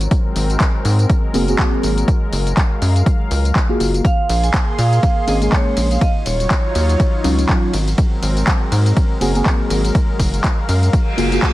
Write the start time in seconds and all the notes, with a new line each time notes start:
Already playing: F#3 G#3 C4 A#4
0.01 closed hi-hat, tambourine
0.11 kick, closed hi-hat, tambourine
0.36 G#1, open hi-hat, tambourine
0.50 closed hi-hat, tambourine
0.60 kick, clap, closed hi-hat, tambourine
0.85 G#2, open hi-hat, tambourine
0.99 closed hi-hat, tambourine
1.10 kick, closed hi-hat, tambourine
1.34 F#1 A#3 C4 F#4 G#4, open hi-hat, tambourine
1.47 A#3 C4 F#4 G#4, closed hi-hat, tambourine
1.59 kick, clap, tambourine
1.83 G#1, open hi-hat, tambourine
1.98 closed hi-hat, tambourine
2.08 F5, kick, closed hi-hat, tambourine
2.32 F#1, open hi-hat, tambourine
2.47 closed hi-hat, tambourine
2.57 kick, clap, closed hi-hat, tambourine
2.82 F#2, open hi-hat, tambourine
2.96 closed hi-hat, tambourine
3.06 kick, closed hi-hat, tambourine
3.31 C#2, open hi-hat, tambourine
3.45 closed hi-hat, tambourine
3.55 kick, clap, tambourine
3.69 A#3 F4 F#4 G#4
3.80 F#1, open hi-hat, tambourine
3.94 closed hi-hat, tambourine
4.04 A#3 G#4 F5 C6, kick, closed hi-hat, tambourine
4.29 A#1, open hi-hat, ride, tambourine
4.43 G#5, closed hi-hat, tambourine
4.54 kick, clap, closed hi-hat, tambourine
4.78 A#2 F5, open hi-hat, ride, tambourine
4.93 closed hi-hat, tambourine
5.03 kick, closed hi-hat, tambourine
5.27 G#1 A#3 C4 C#4 G#4 D#5, open hi-hat, ride, tambourine
5.41 G#3 A#3 C#4 G#4, closed hi-hat, tambourine
5.52 C#5, kick, clap, tambourine
5.77 A#1, open hi-hat, ride, tambourine
5.91 F5, closed hi-hat, tambourine
6.01 F#3 D#4 F4 C#5 D#5, kick, closed hi-hat, tambourine
6.26 D#1 C#5, open hi-hat, ride, tambourine
6.40 closed hi-hat, tambourine
6.51 kick, clap, closed hi-hat, tambourine
6.75 D#2, open hi-hat, ride, tambourine
6.89 closed hi-hat, tambourine
7.00 kick, closed hi-hat, tambourine
7.24 C#2 F#3 C#4 D#4 F4, open hi-hat, ride, tambourine
7.38 F#3 C#4 D#4 F4, closed hi-hat, tambourine
7.49 kick, clap, tambourine
7.74 G#1 F#3 G#3 C4 A#4, open hi-hat, ride, tambourine
7.88 closed hi-hat, tambourine
7.98 kick, closed hi-hat, tambourine
8.23 G#1, open hi-hat, ride, tambourine
8.37 closed hi-hat, tambourine
8.47 kick, clap, closed hi-hat, tambourine
8.72 G#2, open hi-hat, ride, tambourine
8.86 closed hi-hat, tambourine
8.97 kick, closed hi-hat, tambourine
9.21 F#1 A#3 C4 F#4 G#4, open hi-hat, ride, tambourine
9.34 A#3 C4 F#4 G#4, closed hi-hat, tambourine
9.46 kick, clap, tambourine
9.70 G#1, open hi-hat, ride, tambourine
9.85 closed hi-hat, tambourine
9.95 F5, kick, closed hi-hat, tambourine
10.20 F#1, kick, open hi-hat, ride, tambourine
10.34 closed hi-hat, tambourine
10.44 kick, clap, closed hi-hat, tambourine
10.69 F#2, open hi-hat, ride, tambourine
10.83 closed hi-hat, tambourine
10.93 kick, closed hi-hat, tambourine, reverse cymbal
11.17 F#1 A#3 F4 F#4 G#4, open hi-hat, ride, tambourine
11.31 A#3 F4 F#4 G#4, closed hi-hat, tambourine
11.42 kick, clap, tambourine